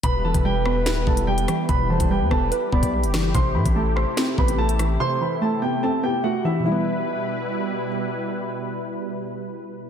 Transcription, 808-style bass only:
\new Staff \with { instrumentName = "808-style bass" } { \clef bass \time 4/4 \key e \minor \tempo 4 = 145 e,,8. e,,4~ e,,16 d,,16 e,,16 e,,4 r8 | e,,8. e,,8 e,16 e,,8 r8 d,,16 b,,8 fis,,8. | a,,8 a,16 a,,4 r8. a,,4. | r1 |
r1 | r1 | }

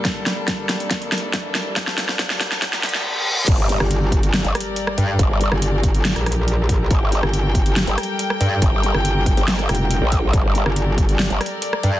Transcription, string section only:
\new Staff \with { instrumentName = "String section" } { \time 4/4 \key g \minor \tempo 4 = 140 << { a'1~ | a'1 | d''1~ | d''1 |
g''1~ | g''1 | d''1 | } \\ { <g, g bes d'>1~ | <g, g bes d'>1 | <g g' a' bes'>1~ | <g g' a' bes'>1~ |
<g g' a' bes'>1~ | <g g' a' bes'>1~ | <g g' a' bes'>1 | } >> }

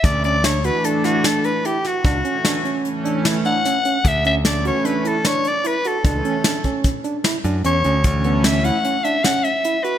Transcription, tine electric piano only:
\new Staff \with { instrumentName = "Tine electric piano" } { \time 5/4 \key d \major \tempo 4 = 150 r8 cis'8 d'8 fis'8 d'8 e'8 d'4 e'8 fis'8 | d'8 cis'8 d'8 cis'4 d'8 e'8 d'8 cis'8 cis'8 | r8 cis'8 d'8 fis'8 d'8 e'8 d'4 e'8 fis'8 | d'8 cis'8 d'8 cis'4 d'8 e'8 d'8 cis'8 cis'8 |
r8 b8 cis'8 e'8 cis'8 d'8 cis'4 e'8 fis'8 | }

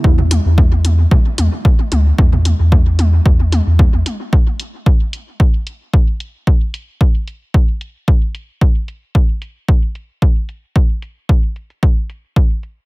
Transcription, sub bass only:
\new Staff \with { instrumentName = "Sub bass" } { \clef bass \time 4/4 \key d \dorian \tempo 4 = 112 e,8. e,4~ e,16 r8 e,16 r8. d,16 r16 | e,8. e,4~ e,16 e,8. e,16 r16 e,16 r8 | r1 | r1 |
r1 | r1 | }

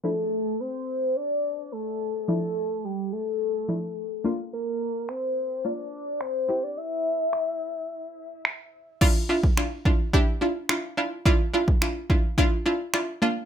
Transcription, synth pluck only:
\new Staff \with { instrumentName = "Synth pluck" } { \time 4/4 \key d \minor \tempo 4 = 107 <f d' e'>1 | <f d' e'>2~ <f d' e'>8 <f d' e'>4 <bes d' f'>8~ | <bes d' f'>2 <bes d' f'>4. <c' e' g'>8~ | <c' e' g'>2.~ <c' e' g'>8 r8 |
<d' e' f'>8 <d' e' f'>8 <d' e' f'>8 <d' e' f'>8 <d' e' g'>8 <d' e' f'>8 <d' e' f'>8 <d' e' f'>8 | <d' e' f'>8 <d' e' f'>8 <d' e' f'>8 <d' e' f'>8 <d' e' f'>8 <d' e' f'>8 <d' e' f'>8 <bes d' f'>8 | }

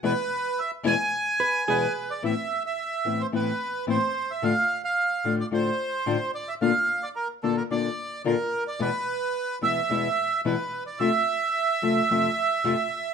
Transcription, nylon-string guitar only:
\new Staff \with { instrumentName = "Nylon-string guitar" } { \clef bass \time 4/4 \key a \minor \tempo 4 = 110 <e, b, e gis b e'>8 r4 <e, b, e gis b e'>8 r4 <e, b, e gis b e'>8 r8 | <a, e b c' e'>8 r4 <a, e b c' e'>8 <a, e b c' e'>8 r8 <a, e b c' e'>8 r8 | <a, d a d' f'>8 r4 <a, d a d' f'>8 <a, d a d' f'>8 r8 <a, d a d' f'>8 r8 | <bes, d bes d' f'>8 r4 <bes, d bes d' f'>8 <bes, d bes d' f'>8 r8 <bes, d bes d' f'>8 r8 |
<e, b, e gis b e'>8 r4 <e, b, e gis b e'>8 <e, b, e gis b e'>8 r8 <e, b, e gis b e'>8 r8 | <f, c f a c' f'>8 r4 <f, c f a c' f'>8 <f, c f a c' f'>8 r8 <f, c f a c' f'>8 r8 | }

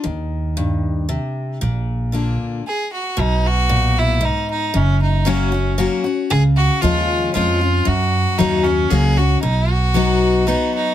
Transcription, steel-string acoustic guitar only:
\new Staff \with { instrumentName = "Steel-string acoustic guitar" } { \time 3/4 \key bes \major \tempo 4 = 115 << { r2. | r4 <d bes d' f'>4 r4 | \key b \major r2. | r4 <fis ais cis' fis'>8 <cis' fis'>8 <fis ais cis' fis'>8 <cis' fis'>8 |
r4 <eis gis cis' eis'>4 <eis gis cis' eis'>8 <cis' eis'>8 | r4 <fis ais cis' fis'>8 <cis' fis'>8 <fis ais cis' fis'>8 <cis' fis'>8 | r4 <fis b dis' fis'>4 <fis b dis' fis'>4 | } \\ { ees4 g,4 c4 | bes,2 r4 | b,4 ais,4 gis,4 | fis,2 r4 |
cis2 r4 | fis,2 r4 | b,2 r4 | } >> }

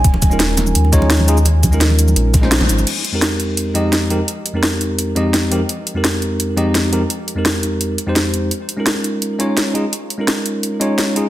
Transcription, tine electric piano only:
\new Staff \with { instrumentName = "Tine electric piano" } { \time 4/4 \key f \minor \tempo 4 = 170 r8. <aes des' ees' f' bes'>4.~ <aes des' ees' f' bes'>16 <aes des' ees' f' des''>4 <aes des' ees' f' aes'>16 r16 | r8. <aes des' ees' f' bes'>4.~ <aes des' ees' f' bes'>16 r16 <aes des' ees' f' c''>4~ <aes des' ees' f' c''>16 | r8. <f, aes c' ees' g' bes'>4.~ <f, aes c' ees' g' bes'>16 <f, aes c' ees' g' ees''>4 <f, aes c' ees' g' bes'>16 r16 | r8. <f, aes c' ees' g' bes'>4.~ <f, aes c' ees' g' bes'>16 <f, aes c' ees' g' ees''>4 <f, aes c' ees' g' bes'>16 r16 |
r8. <f, aes c' ees' g' bes'>4.~ <f, aes c' ees' g' bes'>16 <f, aes c' ees' g' ees''>4 <f, aes c' ees' g' bes'>16 r16 | r8. <f, aes c' ees' g' bes'>4.~ <f, aes c' ees' g' bes'>16 r16 <f, aes c' ees' g' c''>4~ <f, aes c' ees' g' c''>16 | r8. <aes des' ees' f' bes'>4.~ <aes des' ees' f' bes'>16 <aes des' ees' f' des''>4 <aes des' ees' f' aes'>16 r16 | r8. <aes des' ees' f' bes'>4.~ <aes des' ees' f' bes'>16 <aes des' ees' f' des''>4 <aes des' ees' f' aes'>16 r16 | }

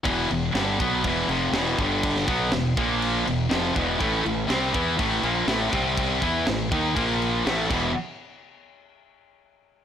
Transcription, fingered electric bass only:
\new Staff \with { instrumentName = "Fingered electric bass" } { \clef bass \time 4/4 \key e \minor \tempo 4 = 122 e,,8 e,,8 g,,8 b,,8 e,,8 f,,8 e,,8 g,,8~ | g,,8 b,,8 e,,8 ais,,4 e,,8 f,,8 e,,8 | a,,8 a,,8 c,8 e,8 a,,8 ais,,8 a,,8 c,8~ | c,8 e,8 a,,8 dis,8 ais,,4 a,,8 e,,8 |
r1 | }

